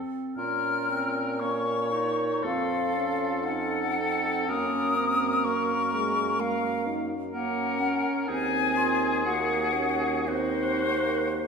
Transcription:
Already playing: C4
0.36 A#2 C#4 F4 A#4 F6
0.89 C4
1.39 A#3 C#4 C#5 C#6
1.92 D#4
2.43 F2 C4 F4 A4 F5
2.95 C#4
3.44 C#4 D#4 A4 F#5
3.97 C4
4.49 F#2 A#3 C#4 A#4 D#6
4.97 C4
5.45 A#3 C#6
5.94 G#3
6.40 A#3 F5
6.87 D#4
7.32 A#3 C#4 A#4 F#5
7.80 C#4
8.28 D#2 C4 D#4 G#4 G#5
8.76 F4
9.25 A#3 F#4 F#5
9.74 C#4
10.26 C4 D#4 F#4 C5
10.86 A#3

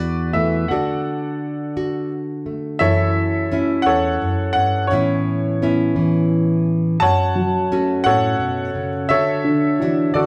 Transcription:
Already playing: E2 E3 B3 F#4 B4 D5
0.33 E3 A3 E5
0.68 D3 F#4 A4 D5 F#5
1.77 F#4
2.46 A3
2.79 F#2 E3 E4 A4 C#5 E5
3.51 A3 C#4 E4
3.82 E2 C#5 F#5
3.87 A4
4.22 F#2
4.53 G2 F#5
4.87 A2 E3 B3 C#5
4.91 C#4 E4
5.62 B3 C#4 E4
5.96 E3
7.00 F#2 F#4 C#5 F#5 A5
7.35 F#3
7.72 A3 C#4 F#4
8.04 A2 A4 C#5 F#5
8.40 B2
8.75 C#3
9.09 D3 F#4 A4 C#5 E5
9.44 D3
9.79 E3 D4 F#4
10.14 D3 F#4 A4 D5

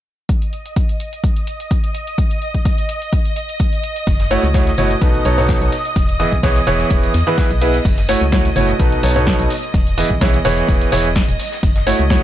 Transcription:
0.29 D#5 D#6, kick, closed hi-hat
0.42 closed hi-hat
0.53 closed hi-hat
0.66 closed hi-hat
0.76 kick, closed hi-hat
0.89 closed hi-hat
1.00 closed hi-hat
1.13 closed hi-hat
1.24 kick, closed hi-hat
1.36 closed hi-hat
1.47 closed hi-hat
1.60 closed hi-hat
1.71 kick, closed hi-hat
1.84 closed hi-hat
1.95 closed hi-hat
2.07 closed hi-hat
2.18 kick, closed hi-hat
2.31 closed hi-hat
2.42 closed hi-hat
2.55 kick, closed hi-hat
2.65 kick, closed hi-hat
2.78 closed hi-hat
2.89 closed hi-hat
3.02 closed hi-hat
3.13 kick, closed hi-hat
3.25 closed hi-hat
3.36 closed hi-hat
3.49 closed hi-hat
3.60 kick, closed hi-hat
3.73 closed hi-hat
3.84 closed hi-hat
3.96 closed hi-hat
4.07 F#1, kick, closed hi-hat, ride
4.20 snare, closed hi-hat
4.31 A3 E4 F#4 C#5, closed hi-hat, ride
4.43 C#2, closed hi-hat
4.54 A3 E4 F#4 C#5, kick, snare, closed hi-hat, ride
4.67 snare, closed hi-hat
4.78 F#1 B2 A3 E4 F#4 C#5, closed hi-hat, open hi-hat
4.91 closed hi-hat
5.02 B1 B2 B3 D#4 A4 B4, kick, closed hi-hat, ride
5.14 closed hi-hat
5.25 B1 B2 B3 D#4 A4 C#5, closed hi-hat, ride
5.38 B2 B3 D#4 A4 C#5, snare, closed hi-hat
5.49 kick, snare, closed hi-hat, ride
5.62 B1, closed hi-hat
5.72 closed hi-hat, ride
5.85 closed hi-hat
5.96 E1, kick, closed hi-hat, ride
6.09 closed hi-hat
6.20 E3 B3 E4 G#4 D#5, closed hi-hat, ride
6.32 B1, kick, closed hi-hat
6.43 E3 B3 E4 G#4 C#5, kick, snare, closed hi-hat, ride
6.56 closed hi-hat, ride
6.67 E1 E3 B3 E4 G#4 C#5, closed hi-hat, ride
6.80 closed hi-hat
6.91 E1, kick, closed hi-hat, ride
7.03 closed hi-hat, ride
7.14 E2, snare, closed hi-hat, ride
7.27 E3 B3 E4 G#4 B4, closed hi-hat
7.38 kick, snare, closed hi-hat, ride
7.51 B1, closed hi-hat
7.61 B3 E4 G#4 B4, closed hi-hat, ride
7.74 snare, closed hi-hat
7.85 F#1 D#5 D#6, kick, closed hi-hat, ride, crash
7.98 snare, closed hi-hat
8.09 A3 E4 F#4 C#5, open hi-hat, ride
8.21 C#2, closed hi-hat
8.32 A3 E4 F#4 C#5, kick, snare, closed hi-hat, ride
8.45 snare, closed hi-hat
8.56 F#1 B2 A3 E4 F#4 C#5, open hi-hat
8.69 closed hi-hat
8.80 B1 B2 B3 D#4 A4 B4, kick, closed hi-hat, ride
8.92 closed hi-hat
9.03 B1 B2 B3 D#4 A4 C#5, open hi-hat, ride
9.16 B2 B3 D#4 A4 C#5, snare, closed hi-hat
9.27 kick, snare, closed hi-hat, ride
9.40 B1, closed hi-hat
9.50 open hi-hat, ride
9.63 closed hi-hat
9.74 E1, kick, closed hi-hat, ride
9.87 closed hi-hat
9.98 E3 B3 E4 G#4 D#5, open hi-hat, ride
10.10 B1, kick, closed hi-hat
10.21 E3 B3 E4 G#4 C#5, kick, snare, closed hi-hat, ride
10.34 closed hi-hat, ride
10.45 E1 E3 B3 E4 G#4 C#5, open hi-hat, ride
10.58 closed hi-hat
10.69 E1, kick, closed hi-hat, ride
10.81 closed hi-hat, ride
10.92 E1 E3 B3 E4 G#4 C#5, snare, open hi-hat, ride
11.05 closed hi-hat
11.16 kick, snare, closed hi-hat, ride
11.29 E1, closed hi-hat
11.39 open hi-hat, ride
11.52 snare, closed hi-hat
11.63 F#1, kick, closed hi-hat, ride
11.76 snare, closed hi-hat
11.87 A3 E4 F#4 C#5, open hi-hat, ride
11.99 C#2, closed hi-hat
12.10 A3 E4 F#4 C#5, kick, snare, closed hi-hat, ride

